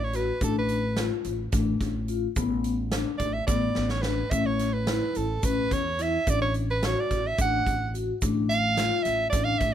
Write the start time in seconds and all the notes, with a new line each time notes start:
Already playing: A1
0.04 C#5
0.13 F#4 B4, snare, closed hi-hat, shaker
0.41 A1 D4 A4, kick, closed hi-hat, shaker
0.59 B4
0.69 closed hi-hat
0.97 F4, snare, closed hi-hat
1.24 A1, closed hi-hat, shaker
1.52 A1 D4, kick, snare, closed hi-hat, shaker
1.81 A1, kick, snare, closed hi-hat
2.08 F4, closed hi-hat, shaker
2.36 A1 B3, kick, closed hi-hat, shaker
2.64 closed hi-hat
2.92 D4, snare, closed hi-hat
3.18 A1 D5, kick, closed hi-hat, shaker
3.33 E5
3.47 A1 B3 D5, kick, snare, shaker
3.75 A1, snare
3.89 C#5, snare
4.02 D4 B4, snare, shaker
4.31 A1 C#4 E5, kick, closed hi-hat, shaker
4.46 C#5
4.59 snare, closed hi-hat
4.73 B4
4.87 E4, snare, closed hi-hat
5.15 A1 A4, closed hi-hat, shaker
5.43 A1 C#4 B4, kick, closed hi-hat, shaker
5.71 E2 C#5, kick, snare, closed hi-hat
5.99 E4 E5, snare, closed hi-hat, shaker
6.27 A1 D4 D5, kick, closed hi-hat, shaker
6.42 C#5
6.54 closed hi-hat
6.71 B4
6.83 F#4 C#5, snare, closed hi-hat
7.00 D5
7.11 A1, kick, snare, closed hi-hat, shaker
7.27 E5
7.38 A1 D4 F#5, kick, snare, closed hi-hat, shaker
7.66 A1, kick, closed hi-hat
7.94 F#4, closed hi-hat, shaker
8.22 A1 D4, kick, closed hi-hat, shaker
8.49 F5, closed hi-hat
8.77 F4, snare, closed hi-hat
9.03 A1 E5, snare, closed hi-hat, shaker
9.30 A1 D4 D5, kick, snare, closed hi-hat, shaker
9.45 F5
9.59 A1 E5, kick, snare, closed hi-hat